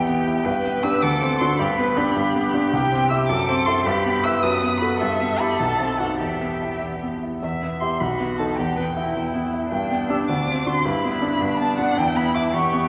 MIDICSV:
0, 0, Header, 1, 4, 480
1, 0, Start_track
1, 0, Key_signature, 1, "minor"
1, 0, Tempo, 379507
1, 578, Time_signature, 6, 3, 24, 8
1, 6334, Tempo, 401070
1, 9694, Tempo, 378072
1, 16127, End_track
2, 0, Start_track
2, 0, Title_t, "Violin"
2, 0, Program_c, 0, 40
2, 0, Note_on_c, 0, 79, 82
2, 311, Note_off_c, 0, 79, 0
2, 581, Note_on_c, 0, 79, 71
2, 1051, Note_on_c, 0, 88, 87
2, 1070, Note_off_c, 0, 79, 0
2, 1290, Note_on_c, 0, 86, 73
2, 1309, Note_off_c, 0, 88, 0
2, 1768, Note_off_c, 0, 86, 0
2, 1776, Note_on_c, 0, 84, 72
2, 2008, Note_off_c, 0, 84, 0
2, 2017, Note_on_c, 0, 83, 80
2, 3187, Note_off_c, 0, 83, 0
2, 3454, Note_on_c, 0, 79, 84
2, 3894, Note_off_c, 0, 79, 0
2, 3913, Note_on_c, 0, 88, 90
2, 4010, Note_off_c, 0, 88, 0
2, 4144, Note_on_c, 0, 86, 90
2, 4624, Note_on_c, 0, 84, 81
2, 4643, Note_off_c, 0, 86, 0
2, 4875, Note_on_c, 0, 83, 90
2, 4894, Note_off_c, 0, 84, 0
2, 5357, Note_on_c, 0, 88, 83
2, 5376, Note_off_c, 0, 83, 0
2, 5598, Note_on_c, 0, 87, 82
2, 5617, Note_off_c, 0, 88, 0
2, 6068, Note_off_c, 0, 87, 0
2, 6075, Note_on_c, 0, 83, 73
2, 6313, Note_off_c, 0, 83, 0
2, 6321, Note_on_c, 0, 76, 80
2, 6789, Note_on_c, 0, 83, 71
2, 6807, Note_off_c, 0, 76, 0
2, 7032, Note_off_c, 0, 83, 0
2, 7038, Note_on_c, 0, 81, 63
2, 7506, Note_on_c, 0, 78, 52
2, 7524, Note_off_c, 0, 81, 0
2, 7742, Note_off_c, 0, 78, 0
2, 7749, Note_on_c, 0, 76, 50
2, 8481, Note_off_c, 0, 76, 0
2, 9210, Note_on_c, 0, 76, 60
2, 9678, Note_on_c, 0, 84, 66
2, 9696, Note_off_c, 0, 76, 0
2, 9926, Note_on_c, 0, 83, 56
2, 9946, Note_off_c, 0, 84, 0
2, 10409, Note_off_c, 0, 83, 0
2, 10417, Note_on_c, 0, 81, 55
2, 10478, Note_off_c, 0, 81, 0
2, 10567, Note_on_c, 0, 81, 44
2, 10640, Note_on_c, 0, 79, 68
2, 10659, Note_off_c, 0, 81, 0
2, 11856, Note_off_c, 0, 79, 0
2, 12101, Note_on_c, 0, 79, 66
2, 12551, Note_off_c, 0, 79, 0
2, 12595, Note_on_c, 0, 88, 72
2, 12690, Note_off_c, 0, 88, 0
2, 12833, Note_on_c, 0, 86, 57
2, 13310, Note_on_c, 0, 84, 63
2, 13329, Note_off_c, 0, 86, 0
2, 13540, Note_on_c, 0, 83, 78
2, 13559, Note_off_c, 0, 84, 0
2, 14495, Note_off_c, 0, 83, 0
2, 14500, Note_on_c, 0, 81, 67
2, 14729, Note_off_c, 0, 81, 0
2, 14736, Note_on_c, 0, 78, 74
2, 14975, Note_on_c, 0, 79, 85
2, 14994, Note_off_c, 0, 78, 0
2, 15202, Note_on_c, 0, 83, 84
2, 15221, Note_off_c, 0, 79, 0
2, 15449, Note_off_c, 0, 83, 0
2, 15455, Note_on_c, 0, 86, 69
2, 15551, Note_off_c, 0, 86, 0
2, 15703, Note_on_c, 0, 85, 61
2, 16127, Note_off_c, 0, 85, 0
2, 16127, End_track
3, 0, Start_track
3, 0, Title_t, "Cello"
3, 0, Program_c, 1, 42
3, 0, Note_on_c, 1, 67, 62
3, 572, Note_on_c, 1, 71, 67
3, 591, Note_off_c, 1, 67, 0
3, 1300, Note_on_c, 1, 69, 64
3, 1319, Note_off_c, 1, 71, 0
3, 2013, Note_off_c, 1, 69, 0
3, 2021, Note_on_c, 1, 67, 60
3, 2115, Note_off_c, 1, 67, 0
3, 2248, Note_on_c, 1, 71, 67
3, 2491, Note_on_c, 1, 67, 67
3, 2510, Note_off_c, 1, 71, 0
3, 4166, Note_on_c, 1, 69, 73
3, 4185, Note_off_c, 1, 67, 0
3, 4868, Note_off_c, 1, 69, 0
3, 4876, Note_on_c, 1, 67, 72
3, 5587, Note_off_c, 1, 67, 0
3, 5602, Note_on_c, 1, 71, 63
3, 6317, Note_off_c, 1, 71, 0
3, 6328, Note_on_c, 1, 69, 65
3, 7730, Note_off_c, 1, 69, 0
3, 7765, Note_on_c, 1, 67, 46
3, 8847, Note_off_c, 1, 67, 0
3, 9930, Note_on_c, 1, 66, 50
3, 10660, Note_on_c, 1, 67, 56
3, 10679, Note_off_c, 1, 66, 0
3, 10898, Note_off_c, 1, 67, 0
3, 10905, Note_on_c, 1, 71, 52
3, 11002, Note_off_c, 1, 71, 0
3, 11150, Note_on_c, 1, 64, 53
3, 12090, Note_off_c, 1, 64, 0
3, 12097, Note_on_c, 1, 62, 56
3, 13515, Note_off_c, 1, 62, 0
3, 13548, Note_on_c, 1, 64, 54
3, 14258, Note_on_c, 1, 62, 61
3, 14277, Note_off_c, 1, 64, 0
3, 14970, Note_on_c, 1, 64, 62
3, 14989, Note_off_c, 1, 62, 0
3, 15694, Note_on_c, 1, 67, 62
3, 15713, Note_off_c, 1, 64, 0
3, 16127, Note_off_c, 1, 67, 0
3, 16127, End_track
4, 0, Start_track
4, 0, Title_t, "Grand piano"
4, 0, Program_c, 2, 0
4, 0, Control_c, 2, 64, 127
4, 0, Note_on_c, 2, 40, 43
4, 0, Note_on_c, 2, 59, 38
4, 0, Note_on_c, 2, 64, 48
4, 105, Note_off_c, 2, 59, 0
4, 105, Note_on_c, 2, 59, 42
4, 344, Note_off_c, 2, 64, 0
4, 344, Note_on_c, 2, 64, 38
4, 487, Note_off_c, 2, 59, 0
4, 562, Note_off_c, 2, 40, 0
4, 577, Note_on_c, 2, 43, 49
4, 582, Note_off_c, 2, 64, 0
4, 603, Control_c, 2, 64, 0
4, 776, Control_c, 2, 64, 127
4, 817, Note_on_c, 2, 59, 36
4, 1058, Note_on_c, 2, 62, 42
4, 1063, Note_on_c, 2, 67, 49
4, 1204, Note_off_c, 2, 59, 0
4, 1276, Note_off_c, 2, 62, 0
4, 1278, Note_off_c, 2, 43, 0
4, 1279, Note_off_c, 2, 67, 0
4, 1295, Note_on_c, 2, 38, 55
4, 1325, Control_c, 2, 64, 0
4, 1506, Control_c, 2, 64, 127
4, 1538, Note_on_c, 2, 60, 45
4, 1780, Note_on_c, 2, 62, 38
4, 1785, Note_on_c, 2, 66, 41
4, 1918, Note_off_c, 2, 60, 0
4, 1989, Note_off_c, 2, 38, 0
4, 1992, Note_off_c, 2, 62, 0
4, 1994, Note_off_c, 2, 66, 0
4, 2016, Note_on_c, 2, 43, 54
4, 2037, Control_c, 2, 64, 0
4, 2209, Control_c, 2, 64, 127
4, 2250, Note_on_c, 2, 59, 42
4, 2496, Note_on_c, 2, 62, 53
4, 2635, Note_off_c, 2, 59, 0
4, 2718, Note_off_c, 2, 43, 0
4, 2737, Note_on_c, 2, 43, 50
4, 2877, Note_off_c, 2, 62, 0
4, 2977, Note_on_c, 2, 59, 49
4, 3216, Note_on_c, 2, 62, 42
4, 3355, Note_off_c, 2, 59, 0
4, 3428, Note_off_c, 2, 43, 0
4, 3450, Note_off_c, 2, 62, 0
4, 3451, Note_on_c, 2, 36, 51
4, 3470, Control_c, 2, 64, 0
4, 3693, Note_on_c, 2, 60, 45
4, 3711, Control_c, 2, 64, 127
4, 3932, Note_on_c, 2, 64, 52
4, 3938, Note_on_c, 2, 67, 49
4, 4069, Note_off_c, 2, 60, 0
4, 4141, Note_off_c, 2, 36, 0
4, 4142, Note_off_c, 2, 64, 0
4, 4145, Note_off_c, 2, 67, 0
4, 4163, Note_on_c, 2, 42, 57
4, 4184, Control_c, 2, 64, 0
4, 4368, Control_c, 2, 64, 127
4, 4411, Note_on_c, 2, 60, 49
4, 4648, Note_on_c, 2, 64, 39
4, 4653, Note_on_c, 2, 69, 42
4, 4790, Note_off_c, 2, 60, 0
4, 4860, Note_off_c, 2, 42, 0
4, 4861, Note_off_c, 2, 64, 0
4, 4864, Note_off_c, 2, 69, 0
4, 4890, Note_on_c, 2, 43, 56
4, 4904, Control_c, 2, 64, 0
4, 5125, Control_c, 2, 64, 127
4, 5129, Note_on_c, 2, 59, 43
4, 5378, Note_on_c, 2, 64, 50
4, 5382, Note_on_c, 2, 71, 52
4, 5511, Note_off_c, 2, 59, 0
4, 5588, Note_off_c, 2, 43, 0
4, 5588, Note_off_c, 2, 64, 0
4, 5591, Note_off_c, 2, 71, 0
4, 5607, Note_on_c, 2, 42, 55
4, 5631, Control_c, 2, 64, 0
4, 5814, Control_c, 2, 64, 127
4, 5857, Note_on_c, 2, 59, 50
4, 6092, Note_on_c, 2, 66, 38
4, 6097, Note_on_c, 2, 69, 39
4, 6241, Note_off_c, 2, 59, 0
4, 6310, Note_off_c, 2, 66, 0
4, 6312, Note_off_c, 2, 42, 0
4, 6313, Note_off_c, 2, 69, 0
4, 6343, Note_on_c, 2, 43, 49
4, 6357, Control_c, 2, 64, 0
4, 6559, Control_c, 2, 64, 127
4, 6574, Note_on_c, 2, 59, 36
4, 6806, Note_on_c, 2, 64, 41
4, 6810, Note_on_c, 2, 67, 47
4, 6947, Note_off_c, 2, 59, 0
4, 7017, Note_off_c, 2, 64, 0
4, 7019, Note_off_c, 2, 67, 0
4, 7021, Note_off_c, 2, 43, 0
4, 7040, Note_on_c, 2, 35, 45
4, 7061, Control_c, 2, 64, 0
4, 7274, Control_c, 2, 64, 127
4, 7280, Note_on_c, 2, 60, 32
4, 7523, Note_on_c, 2, 63, 27
4, 7524, Note_on_c, 2, 66, 30
4, 7665, Note_off_c, 2, 60, 0
4, 7740, Note_off_c, 2, 63, 0
4, 7741, Note_off_c, 2, 35, 0
4, 7741, Note_off_c, 2, 66, 0
4, 7766, Note_on_c, 2, 40, 37
4, 7788, Control_c, 2, 64, 0
4, 7978, Control_c, 2, 64, 127
4, 8011, Note_on_c, 2, 59, 30
4, 8260, Note_on_c, 2, 64, 32
4, 8405, Note_off_c, 2, 59, 0
4, 8490, Note_off_c, 2, 40, 0
4, 8508, Note_on_c, 2, 40, 27
4, 8650, Note_off_c, 2, 64, 0
4, 8749, Note_on_c, 2, 59, 29
4, 8996, Note_on_c, 2, 64, 23
4, 9135, Note_off_c, 2, 59, 0
4, 9208, Note_off_c, 2, 40, 0
4, 9228, Note_on_c, 2, 40, 43
4, 9230, Note_off_c, 2, 64, 0
4, 9253, Control_c, 2, 64, 0
4, 9427, Control_c, 2, 64, 127
4, 9464, Note_on_c, 2, 59, 34
4, 9692, Note_on_c, 2, 64, 36
4, 9697, Note_on_c, 2, 67, 39
4, 9841, Note_off_c, 2, 59, 0
4, 9911, Note_off_c, 2, 64, 0
4, 9914, Note_off_c, 2, 40, 0
4, 9914, Note_off_c, 2, 67, 0
4, 9939, Note_on_c, 2, 35, 44
4, 9962, Control_c, 2, 64, 0
4, 10141, Control_c, 2, 64, 127
4, 10180, Note_on_c, 2, 59, 34
4, 10429, Note_on_c, 2, 63, 33
4, 10433, Note_on_c, 2, 69, 37
4, 10564, Note_off_c, 2, 59, 0
4, 10639, Note_off_c, 2, 35, 0
4, 10641, Note_off_c, 2, 63, 0
4, 10644, Note_off_c, 2, 69, 0
4, 10675, Note_on_c, 2, 40, 46
4, 10680, Control_c, 2, 64, 0
4, 10908, Note_on_c, 2, 59, 33
4, 10924, Control_c, 2, 64, 127
4, 11156, Note_on_c, 2, 64, 41
4, 11292, Note_off_c, 2, 59, 0
4, 11371, Note_off_c, 2, 40, 0
4, 11390, Note_on_c, 2, 40, 40
4, 11536, Note_off_c, 2, 64, 0
4, 11630, Note_on_c, 2, 59, 38
4, 11873, Note_on_c, 2, 64, 35
4, 12012, Note_off_c, 2, 59, 0
4, 12087, Note_off_c, 2, 40, 0
4, 12110, Note_off_c, 2, 64, 0
4, 12113, Note_on_c, 2, 43, 45
4, 12129, Control_c, 2, 64, 0
4, 12324, Control_c, 2, 64, 127
4, 12346, Note_on_c, 2, 59, 39
4, 12589, Note_on_c, 2, 62, 38
4, 12594, Note_on_c, 2, 67, 44
4, 12731, Note_off_c, 2, 59, 0
4, 12804, Note_off_c, 2, 62, 0
4, 12807, Note_off_c, 2, 67, 0
4, 12809, Note_off_c, 2, 43, 0
4, 12833, Note_on_c, 2, 38, 50
4, 12850, Control_c, 2, 64, 0
4, 13063, Note_on_c, 2, 60, 36
4, 13070, Control_c, 2, 64, 127
4, 13309, Note_on_c, 2, 62, 32
4, 13312, Note_on_c, 2, 66, 34
4, 13450, Note_off_c, 2, 60, 0
4, 13526, Note_off_c, 2, 62, 0
4, 13527, Note_off_c, 2, 66, 0
4, 13530, Note_off_c, 2, 38, 0
4, 13551, Note_on_c, 2, 43, 48
4, 13573, Control_c, 2, 64, 0
4, 13788, Note_on_c, 2, 59, 39
4, 13807, Control_c, 2, 64, 127
4, 14016, Note_on_c, 2, 62, 48
4, 14166, Note_off_c, 2, 59, 0
4, 14238, Note_off_c, 2, 43, 0
4, 14257, Note_on_c, 2, 43, 45
4, 14399, Note_off_c, 2, 62, 0
4, 14495, Note_on_c, 2, 59, 42
4, 14736, Note_on_c, 2, 62, 42
4, 14880, Note_off_c, 2, 59, 0
4, 14954, Note_off_c, 2, 43, 0
4, 14972, Note_on_c, 2, 40, 53
4, 14976, Note_off_c, 2, 62, 0
4, 14999, Control_c, 2, 64, 0
4, 15205, Note_on_c, 2, 59, 41
4, 15235, Control_c, 2, 64, 127
4, 15454, Note_on_c, 2, 64, 50
4, 15595, Note_off_c, 2, 59, 0
4, 15671, Note_off_c, 2, 40, 0
4, 15690, Note_on_c, 2, 40, 46
4, 15839, Note_off_c, 2, 64, 0
4, 15933, Note_on_c, 2, 59, 48
4, 16127, Note_off_c, 2, 40, 0
4, 16127, Note_off_c, 2, 59, 0
4, 16127, End_track
0, 0, End_of_file